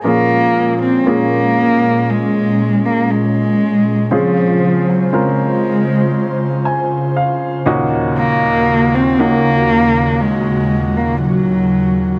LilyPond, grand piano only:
<<
  \new Staff \with { instrumentName = "Grand piano" } { \time 4/4 \key bes \minor \tempo 4 = 59 << { r1 | r2 r8 aes''8 f''8 ees''8 | r1 | } \\ { <bes des' f' aes'>4 <bes des' f' aes'>2 r4 | <c' des' f' aes'>4 <c' des' f' bes'>2 r8 <bes des' ees' ges'>8~ | <bes des' ees' ges'>4 <bes des' ees' ges'>2 r4 | } >> }
  \new Staff \with { instrumentName = "Grand piano" } { \clef bass \time 4/4 \key bes \minor <bes, f>1 | <des aes>2.~ <des aes>8 <ees, bes,>8~ | <ees, bes,>2.~ <ees, bes,>8 r8 | }
>>